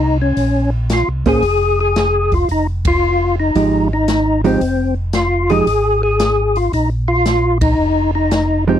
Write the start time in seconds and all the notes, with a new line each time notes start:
Already playing: C2 D#4
0.22 C#4
0.37 A#1, kick, open hi-hat
0.90 F4, snare, closed hi-hat
1.08 C2
1.26 A1 A#3 C#4 G#4 C5, kick, open hi-hat
1.42 F1, kick, open hi-hat
1.81 G#4
1.96 snare, closed hi-hat
2.32 F4, kick, open hi-hat
2.49 F1 D#4, kick, open hi-hat
2.85 F4, kick, ride
3.40 D#4
3.55 G#1 F3 G#3 D#4 G4, kick, open hi-hat
3.93 D#4
4.08 snare, closed hi-hat
4.44 F3 G#3 C4 D#4 G4, open hi-hat
4.61 F1, kick, open hi-hat
5.13 F4, snare, closed hi-hat
5.50 F3 G#3 D#4 G4 G#4, open hi-hat
5.67 G#1, kick, open hi-hat
6.03 G#4
6.20 snare, closed hi-hat
6.56 F4, open hi-hat
6.73 A#1 D#4, kick, open hi-hat
7.08 F4
7.26 snare, closed hi-hat
7.61 D#4, kick, ride
7.77 F1
8.15 D#4
8.31 snare, closed hi-hat
8.67 F3 G#3 C4 D#4 G4